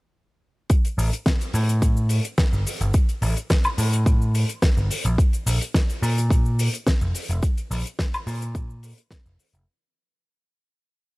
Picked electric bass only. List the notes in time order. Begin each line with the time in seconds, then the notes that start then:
0.98 A1
1.54 A2
2.53 G1
2.81 G1
3.22 A1
3.78 A2
4.77 G1
4.90 muted picked electric bass stroke
5.05 A#1
5.46 A#1
6.02 A#2
7.01 F1
7.29 F1
7.71 A#1
8.27 A#2
9.26 F1
9.39 muted picked electric bass stroke
9.54 F1